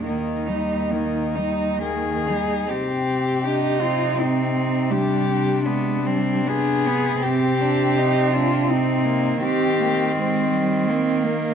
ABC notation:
X:1
M:3/4
L:1/16
Q:1/4=81
K:Eb
V:1 name="Cello"
E8 A4 | [K:Cm] G6 F2 E4 | G4 D4 A4 | G6 F2 E4 |
G4 C4 z4 |]
V:2 name="Cello"
B,2 E2 B,2 E2 B,2 E2 | [K:Cm] z4 E4 C2 C2 | G,4 A,2 G,2 =B,4 | C2 D2 E2 D2 C2 B,2 |
C2 B,2 A,2 G,2 C2 B,2 |]
V:3 name="Cello"
E,2 G,2 E,2 G,2 E,2 G,2 | [K:Cm] C4 D2 C2 C4 | D2 D2 =B,2 C2 D2 B,2 | C8 C4 |
C8 B,4 |]
V:4 name="Cello" clef=bass
E,,8- E,,3 z | [K:Cm] C,12- | C,12 | C,12 |
E,12 |]